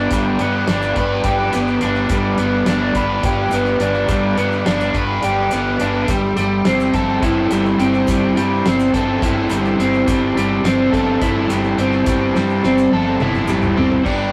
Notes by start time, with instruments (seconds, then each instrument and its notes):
Already playing: overdriven electric guitar G3 B3 D4 G4 B4, transistor combo organ B4 D5 G5 D6
0.11 fingered electric bass G1, overdriven electric guitar G3, kick, closed hi-hat, maracas
0.39 fingered electric bass G2, overdriven electric guitar B3, closed hi-hat
0.67 fingered electric bass G1, overdriven electric guitar D4, snare, closed hi-hat
0.82 maracas
0.96 fingered electric bass G1, overdriven electric guitar B4, kick, closed hi-hat
1.24 fingered electric bass G1, overdriven electric guitar G4, kick, closed hi-hat, maracas
1.53 fingered electric bass G1, overdriven electric guitar B3, snare, closed hi-hat, maracas
1.67 maracas
1.81 fingered electric bass G1, overdriven electric guitar D4, snare, closed hi-hat
1.95 maracas
2.09 fingered electric bass G1, overdriven electric guitar G3, transistor combo organ F5, kick, closed hi-hat, maracas
2.38 fingered electric bass G1, overdriven electric guitar B3, closed hi-hat
2.66 fingered electric bass G1, overdriven electric guitar D4, snare, closed hi-hat
2.95 fingered electric bass G1, overdriven electric guitar B4, kick, closed hi-hat
3.23 fingered electric bass G1, overdriven electric guitar G4, kick, closed hi-hat, maracas
3.51 fingered electric bass G1, overdriven electric guitar B3, closed hi-hat, maracas
3.66 maracas
3.80 fingered electric bass G1, overdriven electric guitar D4, closed hi-hat
3.94 maracas
4.08 fingered electric bass G1, overdriven electric guitar G3, kick, closed hi-hat, maracas
4.37 fingered electric bass G2, overdriven electric guitar B3, closed hi-hat, maracas
4.52 maracas
4.66 fingered electric bass G1, overdriven electric guitar D4, snare, closed hi-hat
4.80 maracas
4.94 fingered electric bass G1, overdriven electric guitar B4, kick, closed hi-hat
5.23 fingered electric bass G1, overdriven electric guitar G4, closed hi-hat
5.51 fingered electric bass G1, overdriven electric guitar B3, closed hi-hat, maracas
5.80 fingered electric bass G1, overdriven electric guitar D4, closed hi-hat
6.08 fingered electric bass G1, overdriven electric guitar G3, transistor combo organ A4 E5 G5 C6, kick, closed hi-hat, maracas
6.37 fingered electric bass G1, overdriven electric guitar G3, snare, closed hi-hat
6.65 fingered electric bass G1, overdriven electric guitar C4, snare, closed hi-hat
6.80 maracas
6.94 fingered electric bass G1, overdriven electric guitar A4, kick, snare, closed hi-hat
7.22 fingered electric bass G1, overdriven electric guitar E4, kick, closed hi-hat, maracas
7.51 fingered electric bass G1, overdriven electric guitar G3, closed hi-hat, maracas
7.65 maracas
7.80 fingered electric bass G1, overdriven electric guitar C4, closed hi-hat
7.94 maracas
8.07 fingered electric bass G1, overdriven electric guitar G3, kick, closed hi-hat, maracas
8.37 fingered electric bass G2, overdriven electric guitar G3, closed hi-hat
8.66 fingered electric bass G1, overdriven electric guitar C4, snare, closed hi-hat
8.79 maracas
8.94 fingered electric bass G1, overdriven electric guitar A4, kick, closed hi-hat
9.22 fingered electric bass G1, overdriven electric guitar E4, kick, closed hi-hat, maracas
9.49 fingered electric bass G1, overdriven electric guitar G3, closed hi-hat, maracas
9.65 maracas
9.79 fingered electric bass G1, overdriven electric guitar C4, closed hi-hat
9.93 maracas
10.07 fingered electric bass G1, overdriven electric guitar G3, transistor combo organ A5, kick, closed hi-hat, maracas
10.37 fingered electric bass G1, overdriven electric guitar G3, closed hi-hat
10.64 fingered electric bass G1, overdriven electric guitar C4, snare, closed hi-hat
10.93 fingered electric bass G1, overdriven electric guitar A4, kick, closed hi-hat
11.21 fingered electric bass G1, overdriven electric guitar E4, kick, closed hi-hat, maracas
11.49 fingered electric bass G1, overdriven electric guitar G3, snare, closed hi-hat, maracas
11.64 maracas
11.78 fingered electric bass G1, overdriven electric guitar C4, closed hi-hat
11.93 maracas
12.06 fingered electric bass G1, overdriven electric guitar G3, kick, closed hi-hat, maracas
12.35 fingered electric bass G2, overdriven electric guitar G3, snare, maracas
12.50 maracas
12.64 fingered electric bass G1, overdriven electric guitar C4, snare
12.78 maracas
12.91 fingered electric bass G1, overdriven electric guitar A4, high tom
13.20 fingered electric bass G1, overdriven electric guitar E4, mid tom, maracas
13.34 mid tom, maracas
13.47 fingered electric bass G1, overdriven electric guitar G3, mid tom, maracas
13.62 floor tom, maracas
13.77 fingered electric bass G1, overdriven electric guitar C4, floor tom
13.92 floor tom
14.04 fingered electric bass G1, overdriven electric guitar G3 B3 D4 G4, transistor combo organ B4 D5 G5 D6, kick, crash